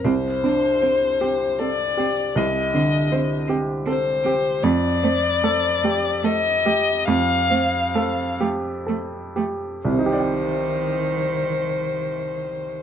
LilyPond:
<<
  \new Staff \with { instrumentName = "Violin" } { \time 3/4 \key c \dorian \tempo 4 = 74 c''2 d''4 | ees''4. r8 c''4 | d''2 ees''4 | f''4. r4. |
c''2. | }
  \new Staff \with { instrumentName = "Grand piano" } { \time 3/4 \key c \dorian c,8 d'8 c''8 g'8 a'8 g'8 | c,8 d8 c''8 g'8 a'8 g'8 | f,8 c'8 a'8 g'8 a'8 g'8 | f,8 c'8 a'8 g'8 a'8 g'8 |
<c, c ees' g' d'' g''>2. | }
  \new Staff \with { instrumentName = "Cello" } { \time 3/4 \key c \dorian c'8 c'8 c'8 c'8 c'8 c'8 | c'8 c'8 c'8 c'8 c'8 c'8 | a8 a8 a8 a8 a8 a8 | a8 a8 a8 a8 a8 a8 |
ees2. | }
>>